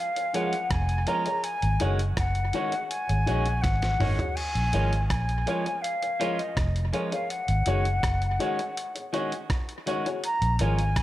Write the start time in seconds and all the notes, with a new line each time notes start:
Already playing: F5
0.16 A#4 C#5, closed hi-hat
0.33 F3 G#3 C#4 F4 G#4 A#4 C#5 F#5, closed hi-hat
0.53 closed hi-hat
0.70 F1 G#5, kick, cross-stick, closed hi-hat
0.89 closed hi-hat
1.06 F3 G#3 C#4 F4 G#4 A#4 C#5 A#5, closed hi-hat
1.26 G#4 A#4 C#5, closed hi-hat
1.43 G#5, closed hi-hat
1.62 G#1, closed hi-hat
1.80 F#1 D#3 G#3 C#4 F#4 G#4 C#5, closed hi-hat
1.99 closed hi-hat
2.17 F#1 F#5, kick, cross-stick, closed hi-hat
2.35 closed hi-hat
2.53 D#3 G#3 C#4 F#4 G#4 C#5, closed hi-hat
2.72 G#4 C#5, closed hi-hat
2.88 G#5, closed hi-hat
3.09 G#1 G#4 C#5, closed hi-hat
3.26 A#1 D#3 G#3 C#4 F#4 G#4 C#5, closed hi-hat
3.46 closed hi-hat
3.61 G#1 F#5, kick, snare, closed hi-hat
3.82 snare, closed hi-hat
3.99 G#1 D#3 G#3 C#4 F#4 G#4 C#5, mid tom, open hi-hat
4.18 F#4 G#4 C#5, closed hi-hat, floor tom
4.35 G#5, crash
4.55 A#1, closed hi-hat
4.72 G#1 F3 G#3 C#4 F4 G#4 A#4 C#5, closed hi-hat
4.93 closed hi-hat
5.08 A#1 G#5, kick, cross-stick, closed hi-hat
5.29 closed hi-hat
5.46 F3 G#3 C#4 F4 G#4 A#4 C#5, closed hi-hat
5.65 A#4 C#5, closed hi-hat
5.81 F5, closed hi-hat
6.02 A#4 C#5, closed hi-hat
6.20 F3 G#3 C#4 F4 G#4 A#4 C#5, closed hi-hat
6.39 D#5, closed hi-hat
6.57 F1, kick, cross-stick, closed hi-hat
6.76 closed hi-hat
6.93 F3 G#3 C#4 F4 G#4 A#4 C#5, closed hi-hat
7.12 G#4 A#4 C#5 F5, closed hi-hat
7.29 F#5, closed hi-hat
7.48 G#1, closed hi-hat
7.66 F#1 D#3 G#3 C#4 F#4 G#4 C#5, closed hi-hat
7.85 closed hi-hat
8.03 F#1, kick, cross-stick, closed hi-hat
8.22 closed hi-hat
8.39 D#3 G#3 C#4 F#4 G#4 C#5, closed hi-hat
8.58 G#4 C#5, closed hi-hat
8.77 closed hi-hat
8.95 G#4 C#5, closed hi-hat
9.13 D#3 G#3 C#4 F#4 G#4 C#5, closed hi-hat
9.32 closed hi-hat
9.50 kick, cross-stick, closed hi-hat
9.69 closed hi-hat
9.86 D#3 G#3 C#4 F#4 G#4 C#5, closed hi-hat
10.05 F#4 G#4 C#5, closed hi-hat
10.24 A#5, closed hi-hat
10.42 A#1, closed hi-hat
10.59 G#1 F3 G#3 C#4 F4 G#4 A#4 C#5 G#5, closed hi-hat
10.79 closed hi-hat
10.96 A#1, kick, cross-stick, closed hi-hat